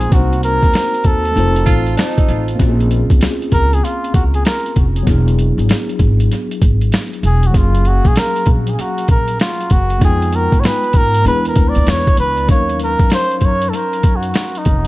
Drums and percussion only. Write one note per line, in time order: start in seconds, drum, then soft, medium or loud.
0.01 closed hi-hat medium
0.12 kick loud
0.12 closed hi-hat medium
0.33 closed hi-hat medium
0.43 closed hi-hat medium
0.63 kick medium
0.63 closed hi-hat soft
0.74 snare loud
0.74 closed hi-hat medium
0.94 closed hi-hat soft
1.04 kick medium
1.04 closed hi-hat medium
1.25 closed hi-hat soft
1.37 closed hi-hat medium
1.56 closed hi-hat medium
1.67 kick medium
1.67 closed hi-hat medium
1.86 closed hi-hat medium
1.98 snare loud
1.98 closed hi-hat medium
2.18 kick loud
2.18 closed hi-hat soft
2.28 closed hi-hat medium
2.48 closed hi-hat medium
2.59 kick medium
2.59 closed hi-hat loud
2.80 closed hi-hat medium
2.91 closed hi-hat medium
3.10 kick medium
3.10 closed hi-hat soft
3.21 snare loud
3.21 closed hi-hat loud
3.42 closed hi-hat soft
3.52 kick medium
3.52 closed hi-hat medium
3.73 closed hi-hat medium
3.85 closed hi-hat medium
4.04 closed hi-hat medium
4.14 kick medium
4.14 closed hi-hat medium
4.34 closed hi-hat medium
4.45 snare loud
4.45 closed hi-hat medium
4.66 closed hi-hat medium
4.76 kick medium
4.76 closed hi-hat medium
4.96 closed hi-hat medium
5.07 kick medium
5.07 closed hi-hat loud
5.28 closed hi-hat medium
5.39 closed hi-hat medium
5.59 closed hi-hat soft
5.69 snare loud
5.69 closed hi-hat medium
5.89 closed hi-hat soft
5.99 kick medium
5.99 closed hi-hat medium
6.20 closed hi-hat medium
6.31 closed hi-hat medium
6.51 closed hi-hat medium
6.62 kick medium
6.62 closed hi-hat medium
6.81 closed hi-hat medium
6.92 snare loud
6.92 closed hi-hat medium
7.13 closed hi-hat medium
7.23 closed hi-hat medium
7.43 closed hi-hat medium
7.54 kick loud
7.54 closed hi-hat loud
7.75 closed hi-hat medium
7.85 closed hi-hat medium
8.05 kick medium
8.05 closed hi-hat soft
8.16 snare loud
8.16 closed hi-hat loud
8.36 closed hi-hat medium
8.46 kick medium
8.46 closed hi-hat medium
8.67 closed hi-hat medium
8.79 closed hi-hat medium
8.98 closed hi-hat medium
9.08 kick medium
9.08 closed hi-hat medium
9.28 closed hi-hat medium
9.40 snare loud
9.40 closed hi-hat medium
9.61 closed hi-hat medium
9.70 kick medium
9.70 closed hi-hat medium
9.90 closed hi-hat medium
10.01 kick loud
10.01 closed hi-hat loud
10.22 closed hi-hat medium
10.33 closed hi-hat medium
10.52 kick medium
10.52 closed hi-hat soft
10.63 snare loud
10.63 closed hi-hat medium
10.84 closed hi-hat soft
10.93 kick medium
10.93 closed hi-hat medium
11.14 closed hi-hat medium
11.26 closed hi-hat medium
11.45 closed hi-hat medium
11.55 kick medium
11.55 closed hi-hat medium
11.75 closed hi-hat medium
11.87 snare loud
11.87 closed hi-hat medium
12.07 kick loud
12.07 closed hi-hat medium
12.17 closed hi-hat medium
12.37 closed hi-hat soft
12.49 kick loud
12.49 closed hi-hat loud
12.69 closed hi-hat medium
12.79 closed hi-hat medium
12.99 kick loud
12.99 closed hi-hat medium
13.10 snare loud
13.10 closed hi-hat loud
13.31 closed hi-hat soft
13.41 kick medium
13.41 closed hi-hat medium
13.62 closed hi-hat medium
13.73 closed hi-hat medium
13.93 closed hi-hat medium
14.03 kick medium
14.03 closed hi-hat medium
14.23 closed hi-hat medium
14.34 snare loud
14.34 closed hi-hat medium
14.55 closed hi-hat medium
14.65 kick medium
14.65 closed hi-hat medium